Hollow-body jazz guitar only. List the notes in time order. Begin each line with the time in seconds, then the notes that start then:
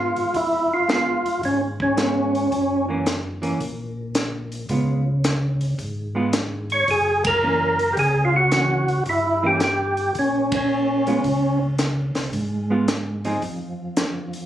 Already playing: G#3 B3 F4
0.88 G#3 B3 F4
1.97 G#3 B3 F4
2.89 E3 A#3 C#4
3.42 E3 A#3 C#4
4.70 G#3 B3 F4
6.15 G#3 B3 F4
7.43 E3 A#3 C#4
8.52 E3 A#3 C#4
9.43 E3 A#3 C#4
11.07 G#3 B3 F4
12.70 G#3 B3 F4
13.25 F3 C4 D#4 G#4